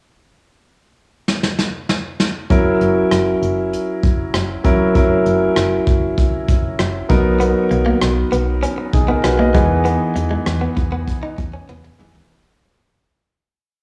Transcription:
1.28 snare medium
1.43 snare medium
1.59 snare medium
1.89 snare medium
2.20 snare medium
2.50 2.72 F#1 medium
2.50 3.31 F#3 medium
2.50 3.31 C#4 medium
2.50 3.31 E4 medium
2.50 3.31 A#4 medium
2.50 kick loud
2.50 closed hi-hat medium
2.81 3.03 F#1 medium
2.81 closed hi-hat medium
3.11 3.34 F#1 loud
3.11 cross-stick medium
3.11 closed hi-hat medium
3.42 3.75 F#1 loud
3.42 closed hi-hat medium
3.73 closed hi-hat medium
4.03 4.26 F#1 medium
4.03 kick medium
4.03 closed hi-hat medium
4.34 4.56 F#1 medium
4.34 cross-stick loud
4.34 closed hi-hat medium
4.64 4.87 E1 medium
4.64 4.84 F#3 medium
4.64 4.85 C#4 medium
4.64 4.85 E4 medium
4.64 4.85 A#4 medium
4.64 kick medium
4.64 closed hi-hat medium
4.95 5.17 F#1 loud
4.95 5.75 F#3 medium
4.95 5.76 C#4 medium
4.95 5.76 E4 medium
4.95 5.76 A#4 medium
4.95 kick medium
4.95 closed hi-hat medium
5.26 5.48 F#1 medium
5.26 closed hi-hat medium
5.56 5.79 F#1 loud
5.56 cross-stick loud
5.56 closed hi-hat medium
5.87 6.20 F#1 medium
5.87 kick medium
5.87 closed hi-hat medium
6.18 kick medium
6.18 closed hi-hat medium
6.48 6.70 F#1 medium
6.48 kick medium
6.48 closed hi-hat medium
6.79 7.01 F#1 loud
6.79 cross-stick loud
6.79 closed hi-hat medium
7.09 7.54 B1 medium
7.09 8.07 F#3 medium
7.09 8.07 B3 medium
7.09 8.08 D#4 medium
7.09 8.08 A#4 medium
7.09 kick loud
7.09 closed hi-hat medium
7.40 7.50 B3 medium
7.40 closed hi-hat medium
7.71 7.93 B1 loud
7.71 muted clean electric guitar stroke soft
7.71 closed hi-hat medium
7.86 7.95 A#3 medium
8.02 8.24 B1 loud
8.02 cross-stick medium
8.02 closed hi-hat medium
8.32 8.65 B1 medium
8.32 8.41 B3 medium
8.32 closed hi-hat medium
8.63 8.72 C#4 medium
8.63 closed hi-hat medium
8.78 muted clean electric guitar stroke soft
8.93 9.15 B1 medium
8.93 9.08 D#4 soft
8.93 9.08 G#4 medium
8.93 kick medium
8.93 closed hi-hat medium
9.08 9.18 B3 medium
9.08 9.23 D#4 medium
9.08 9.23 A#4 medium
9.24 9.56 B1 loud
9.24 9.39 F#4 medium
9.24 9.38 B4 medium
9.24 muted clean electric guitar stroke soft
9.24 cross-stick loud
9.24 closed hi-hat medium
9.39 9.48 A#3 medium
9.39 9.69 A#4 medium
9.39 9.68 D#5 medium
9.54 9.99 E2 loud
9.54 10.52 E3 medium
9.54 9.64 G#3 medium
9.54 10.52 B3 medium
9.54 10.53 D#4 medium
9.54 10.53 G#4 medium
9.54 kick loud
9.54 closed hi-hat medium
9.85 9.94 B3 medium
9.85 closed hi-hat medium
10.16 10.38 E2 medium
10.16 muted clean electric guitar stroke soft
10.16 closed hi-hat medium
10.31 10.40 G#3 medium
10.46 10.68 E2 loud
10.46 cross-stick loud
10.46 closed hi-hat medium
10.61 10.71 B3 medium
10.77 11.10 E2 loud
10.77 muted clean electric guitar stroke soft
10.77 kick medium
10.77 closed hi-hat medium
10.92 11.01 B3 medium
11.08 kick medium
11.08 closed hi-hat medium
11.23 11.32 D#4 medium
11.38 11.60 E2 medium
11.38 muted clean electric guitar stroke soft
11.38 kick medium
11.38 closed hi-hat medium
11.53 11.63 C#4 medium
11.69 11.91 E2 medium
11.69 11.78 B3 medium
11.69 high tom medium
11.84 muted clean electric guitar stroke soft
11.84 mid tom medium
11.99 12.21 D#2 medium
11.99 12.19 E3 medium
11.99 12.19 B3 medium
11.99 12.20 D#4 medium
11.99 12.20 G#4 medium
11.99 mid tom medium
12.15 12.24 G#3 medium
12.15 floor tom medium

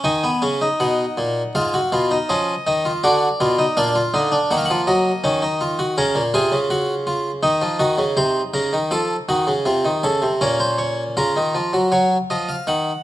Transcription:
0.04 0.28 D#3 loud
0.04 0.23 D#4 medium
0.04 0.78 G#5 medium
0.24 0.42 B3 medium
0.42 0.66 C#3 medium
0.42 0.61 C#4 medium
0.61 1.52 D#4 medium
0.80 1.03 B2 medium
0.80 1.53 F#5 medium
1.18 1.41 A#2 medium
1.55 1.78 G#2 medium
1.55 1.73 F4 medium
1.55 2.28 F5 medium
1.74 1.92 F#4 medium
1.92 2.16 B2 medium
1.92 2.11 F4 medium
2.11 2.29 D#4 medium
2.29 2.53 F3 medium
2.29 2.53 C#4 medium
2.29 3.02 D#5 medium
2.67 2.90 D#3 medium
2.67 2.85 D#4 medium
2.85 3.04 F4 medium
3.04 3.27 D3 loud
3.04 3.27 F#4 medium
3.04 3.75 D5 medium
3.40 3.63 B2 loud
3.40 3.59 F4 medium
3.59 3.77 D#4 medium
3.77 4.00 A#2 loud
3.77 3.95 D4 medium
3.77 4.48 F5 medium
3.95 4.14 F4 medium
4.14 4.37 D3 medium
4.14 4.32 D#4 medium
4.32 4.50 D4 medium
4.51 4.69 D#3 loud
4.51 5.22 A#3 medium
4.51 4.55 F#5 medium
4.58 4.65 F5 medium
4.65 4.79 F#5 medium
4.70 4.88 F3 loud
4.87 5.10 F#3 loud
4.87 5.94 D#5 medium
5.24 5.95 D#3 loud
5.24 5.42 C#4 medium
5.42 5.60 D#4 medium
5.61 5.79 F4 medium
5.79 5.97 F#4 medium
5.98 6.16 C#3 loud
5.98 6.21 C#4 medium
5.98 6.20 A#4 loud
6.15 6.33 A#2 medium
6.34 6.52 C3 medium
6.34 7.06 F4 medium
6.34 6.57 G#4 loud
6.52 7.40 C#3 medium
6.70 6.93 F#4 loud
7.07 7.30 F4 medium
7.43 7.61 D#3 medium
7.43 10.37 D#4 loud
7.62 7.80 F3 medium
7.79 7.98 D#3 medium
7.79 8.03 F#4 loud
7.98 8.16 C#3 medium
8.17 8.40 C3 medium
8.17 8.40 C5 loud
8.54 8.72 C#3 medium
8.54 8.77 A#4 medium
8.73 8.91 D#3 medium
8.91 9.14 F3 medium
8.91 9.15 A4 loud
9.29 9.47 D#3 medium
9.29 9.52 F#4 loud
9.47 9.66 C#3 medium
9.65 9.84 C3 medium
9.65 9.89 F4 medium
9.85 10.03 D#3 medium
10.03 10.22 C#3 medium
10.03 10.27 A4 medium
10.22 10.40 C3 medium
10.41 11.14 A#2 medium
10.41 11.14 C#4 medium
10.41 10.59 A#4 medium
10.60 10.78 C5 medium
10.78 11.02 C#5 medium
11.17 11.35 C#3 medium
11.17 11.90 F4 medium
11.17 11.90 A#4 medium
11.36 11.54 D#3 medium
11.55 11.73 F3 medium
11.73 11.91 F#3 medium
11.92 12.15 F#3 medium
11.92 12.16 C#5 medium
12.30 12.54 F3 medium
12.30 12.48 D#5 medium
12.49 12.67 F5 medium
12.67 12.90 D#3 medium
12.67 13.03 F#5 medium

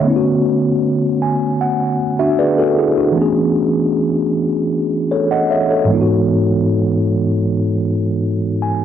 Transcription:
0.00 2.32 D3 medium
0.00 2.34 A3 medium
0.00 0.23 C#5 medium
0.05 2.35 B3 medium
0.05 1.97 C#4 medium
0.10 0.14 E4 medium
0.16 2.02 F#4 medium
1.22 1.58 G#5 medium
1.61 1.97 F#5 medium
2.19 2.38 D4 medium
2.19 2.38 F#4 medium
2.19 2.37 E5 medium
2.39 2.58 G#4 medium
2.39 2.57 B4 medium
2.39 3.13 D5 medium
2.58 2.77 F#4 medium
2.58 2.77 A4 medium
2.78 2.97 E4 medium
2.78 2.97 G#4 medium
2.97 3.35 D4 medium
2.97 3.34 F#4 medium
3.12 5.83 E3 medium
3.12 5.84 A3 medium
3.17 5.85 B3 medium
3.17 5.87 C#4 medium
3.21 5.10 G#4 medium
5.11 5.30 A4 medium
5.11 5.30 C#5 medium
5.31 5.50 D#5 medium
5.31 5.50 F#5 medium
5.50 5.69 C#5 medium
5.50 5.69 E5 medium
5.70 6.07 A4 medium
5.70 6.07 C#5 medium
5.85 8.85 G#2 medium
5.85 8.85 E3 medium
5.85 8.85 G#3 medium
5.90 8.85 B3 medium
5.90 8.85 D#4 medium
5.90 5.98 F4 medium
6.01 8.85 F#4 medium
8.62 8.85 G#5 medium

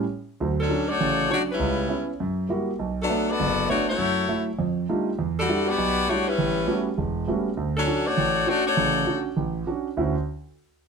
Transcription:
0.40 0.66 D2 medium
0.40 0.66 F#3 medium
0.61 0.88 F#3 medium
0.61 0.88 C#4 medium
0.61 0.88 D4 medium
0.61 0.88 A4 medium
0.69 0.90 F#3 medium
0.69 0.90 C#4 soft
0.69 0.90 D4 medium
0.89 1.31 A3 loud
0.89 1.31 F#4 loud
0.89 1.30 C#5 loud
0.89 1.30 D5 loud
1.00 1.26 A1 medium
1.00 1.26 C#3 medium
1.29 1.49 F#3 medium
1.29 1.40 A3 medium
1.29 1.50 C#4 soft
1.29 1.50 D4 medium
1.29 1.40 D4 medium
1.29 1.40 F#4 medium
1.29 1.40 C#5 loud
1.52 2.06 G3 medium
1.52 2.06 C#4 medium
1.52 2.06 E4 medium
1.52 2.07 B4 medium
1.59 1.85 C#2 medium
1.88 2.09 B3 soft
1.88 2.09 C#4 medium
1.88 2.10 E4 medium
2.20 2.46 F#2 medium
2.49 2.69 G3 medium
2.49 2.69 A#3 medium
2.49 2.70 E4 medium
2.49 2.70 F#4 medium
2.79 3.05 B1 medium
3.02 3.29 F#3 medium
3.02 3.29 B3 medium
3.02 3.28 D4 medium
3.02 3.29 A4 medium
3.10 3.30 A3 medium
3.10 3.30 B3 medium
3.10 3.30 D4 medium
3.30 3.71 B3 medium
3.30 3.69 F#4 loud
3.30 3.71 A4 loud
3.30 3.70 D5 loud
3.40 3.66 F#1 medium
3.69 3.89 A3 medium
3.69 3.87 A3 medium
3.69 3.89 B3 medium
3.69 3.90 D4 medium
3.69 3.87 D4 medium
3.69 3.88 F#4 medium
3.69 3.88 C#5 loud
3.89 4.45 A3 medium
3.89 4.45 E4 medium
3.89 4.45 F#4 medium
3.89 4.45 C#5 medium
3.98 4.25 F#2 medium
4.28 4.49 F#3 soft
4.28 4.49 A3 soft
4.28 4.49 E4 medium
4.59 4.85 F2 medium
4.89 5.09 G3 medium
4.89 5.09 A3 soft
4.89 5.09 D4 soft
4.89 5.09 D#4 soft
4.89 5.09 F4 medium
5.19 5.45 E2 medium
5.40 5.67 G3 medium
5.40 5.67 D4 medium
5.40 5.67 F#4 medium
5.40 5.67 A4 medium
5.48 5.69 G3 medium
5.48 5.69 D4 soft
5.48 5.69 E4 soft
5.48 5.69 F#4 medium
5.69 6.09 B3 loud
5.69 6.09 F#4 loud
5.69 6.09 G4 loud
5.69 6.09 D5 loud
5.78 6.04 B1 medium
6.08 6.28 G3 medium
6.08 6.28 A3 medium
6.08 6.28 D4 soft
6.08 6.28 D4 medium
6.08 6.29 E4 soft
6.08 6.29 F#4 medium
6.08 6.28 F#4 medium
6.08 6.28 C#5 loud
6.29 6.88 G3 medium
6.29 6.88 C#4 medium
6.29 6.88 E4 medium
6.29 6.88 B4 medium
6.38 6.64 A1 medium
6.67 6.88 G3 medium
6.67 6.88 A3 soft
6.67 6.88 B3 soft
6.67 6.88 C#4 soft
6.67 6.88 F#4 medium
6.98 7.24 E1 medium
7.27 7.48 G3 medium
7.27 7.48 A3 soft
7.27 7.48 B3 soft
7.27 7.48 C#4 medium
7.27 7.48 F#4 medium
7.57 7.83 D2 medium
7.77 8.05 F#3 medium
7.77 8.05 C#4 medium
7.77 8.05 D4 medium
7.77 8.05 A4 medium
7.87 8.07 C#4 medium
7.87 8.07 D4 medium
7.87 8.08 F#4 medium
8.07 8.48 A3 loud
8.07 8.47 F#4 loud
8.07 8.48 C#5 loud
8.07 8.48 D5 loud
8.17 8.43 A1 medium
8.46 8.66 A3 medium
8.46 8.67 C#4 medium
8.46 8.67 D4 soft
8.46 8.67 D4 loud
8.46 8.67 F#4 medium
8.46 8.66 F#4 medium
8.46 8.66 C#5 loud
8.67 9.23 A3 medium
8.67 9.22 F#4 medium
8.67 9.22 C#5 medium
8.67 9.23 D5 loud
8.77 9.03 A1 medium
8.77 9.03 C#3 medium
9.06 9.27 C#4 medium
9.06 9.27 D4 soft
9.06 9.27 F#4 medium
9.37 9.63 A1 medium
9.67 9.87 C#4 medium
9.67 9.87 D4 soft
9.67 9.87 F#4 medium
9.97 10.14 D2 medium
9.97 10.14 D3 medium
9.97 10.14 C#4 medium
9.97 10.14 E4 medium
9.97 10.14 F#4 medium

